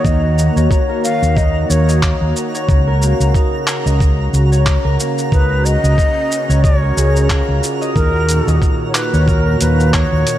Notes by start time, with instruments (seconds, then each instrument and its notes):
Already playing: analog synth pad D#3 A#3 F#4, harp A#3 D#4 F#4 A#4 C#5 D#5, synth texture A#5
0.05 fretless electric bass D#2, bansuri D#5, kick, shaker
0.38 shaker
0.56 fretless electric bass D#2, harp C#5, shaker
0.71 harp F#4, kick, shaker
0.89 harp A#4
1.04 harp A#3, bansuri F5, shaker
1.22 fretless electric bass D#2, shaker
1.37 harp D#4, bansuri D#5, kick, shaker
1.70 fretless electric bass D#2, bansuri C#5, shaker
1.88 harp D#5, shaker
2.03 kick, clap, shaker
2.21 fretless electric bass D#2
2.36 shaker
2.54 harp C#5, shaker
2.69 fretless electric bass C#2, analog synth pad C#3, harp F#4, kick, shaker
2.87 harp A#4
3.02 harp A#3, shaker
3.20 fretless electric bass C#2, shaker
3.34 harp D#4, kick, shaker
3.67 clap, shaker
3.86 fretless electric bass C#2, harp D#5, shaker
4.00 kick, shaker
4.33 fretless electric bass C#2, shaker
4.52 harp C#5, shaker
4.66 harp F#4, kick, clap, shaker
4.85 fretless electric bass C#2, harp A#4
4.99 harp A#3, shaker
5.18 shaker
5.32 fretless electric bass C#2, analog synth pad C#4, harp D#4, bansuri B4, kick, shaker
5.65 bansuri D#5, shaker
5.84 fretless electric bass C#2, harp D#5, shaker
5.98 kick, shaker
6.32 shaker
6.49 fretless electric bass C#2, harp C#5, shaker
6.64 harp F#4, bansuri C#5, kick, shaker
6.83 harp A#4
6.97 fretless electric bass C#2, harp G#4, shaker
7.16 shaker
7.30 harp F4, kick, clap, shaker
7.49 fretless electric bass C#2
7.63 shaker
7.81 harp D#5, shaker
7.95 fretless electric bass D#2, analog synth pad A#2 D#3 F#4, harp D#4, bansuri A#4, kick, shaker
8.29 closed hi-hat, shaker
8.47 fretless electric bass D#2, harp D#5, shaker
8.62 kick, shaker
8.88 bansuri C#5
8.94 bansuri B4, clap, closed hi-hat, shaker
9.13 fretless electric bass D#2, harp C#5, shaker
9.27 harp F#4, bansuri A#4, kick, shaker
9.46 harp A#4
9.61 fretless electric bass D#2, harp A#3, bansuri B4, closed hi-hat, shaker
9.80 shaker
9.93 harp D#4, bansuri C#5, kick, clap, shaker
10.12 fretless electric bass D#2
10.27 closed hi-hat, shaker